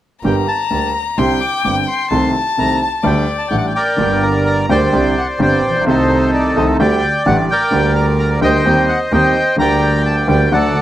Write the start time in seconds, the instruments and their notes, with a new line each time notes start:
0.23 double bass G1, grand piano G1 G2 D3 G3 A#3 G4, bandoneon G5, violin A#5
0.48 bandoneon A5
0.70 grand piano D2 D3 G3 A#3 G4, double bass D2
0.94 bandoneon A#5
1.18 double bass C2, grand piano C2 C3 D3 G3 C4 G4, violin G5, bandoneon C6
1.41 bandoneon D6
1.64 grand piano G1 G2 D3 G3 C4 G4, double bass G1, bandoneon D6
1.88 bandoneon C6
2.11 grand piano C2 C3 D#3 A3 C4 A4, double bass C2, violin A5
2.57 double bass C2, grand piano C2 C3 D#3 A3 C4 A4, bandoneon A#5
2.82 bandoneon A5
3.03 double bass D2, grand piano D2 D3 G3 A3 D4 A4, violin D5, bandoneon G5
3.38 bandoneon A5
3.48 grand piano A1 A2 G3 A3 D4 A4, double bass A1, bandoneon F#5 G5
3.57 bandoneon F#5
3.67 bandoneon G5
3.75 bandoneon A#4 D5 G5
3.97 double bass G1, grand piano G1 G2 D3 G3 A#3
4.01 grand piano G4
4.23 bandoneon A#5
4.46 bandoneon A#5
4.69 double bass D2, grand piano D2 D3 G3 A#3 G4, bandoneon C5 D5 G5
4.93 double bass C2, grand piano C2 C3 D3 G3 C4 G4
5.17 bandoneon F#5
5.39 grand piano G1 G2 D3 G3 C4 G4, double bass G1, bandoneon C5 D5 G5
5.63 double bass A#1
5.69 grand piano A1
5.76 grand piano A#1
5.81 grand piano B1 D#3
5.86 grand piano C2 C3 A3 C4 A4, double bass C2, bandoneon D#4 A4 C5
6.34 bandoneon D5
6.56 double bass C2, grand piano C2 C3 D#3 A3 C4 A4, bandoneon D#5
6.79 grand piano D2 D3 G3 A3 G4, double bass D2, bandoneon D5 G5
7.26 grand piano A1 A2 D3 G3 A3 G4, double bass A1, bandoneon F#5
7.51 bandoneon A#4 D5 G5
7.71 grand piano D2 D3 G3 A#3 G4, double bass D2
7.96 bandoneon A#5
8.19 bandoneon A#5
8.41 grand piano D2 D3 G3 A#3 G4, double bass D2, bandoneon C5 D#5 G5
8.65 grand piano D#2 D#3 G3 C4 G4, double bass D#2
8.89 bandoneon F#5
9.12 double bass D#2, grand piano D#2 D#3 G3 C4 G4, bandoneon C5 D#5 G5
9.56 double bass D2, grand piano D2 D3 G3 A#3 G4, bandoneon A#5
9.61 bandoneon D5 G5
10.06 bandoneon A5
10.28 grand piano D2 D3 G3 A#3 G4, double bass D2, bandoneon G5
10.52 double bass D2, grand piano D2 D3 F#3 A3 F#4, bandoneon A4 D5 F#5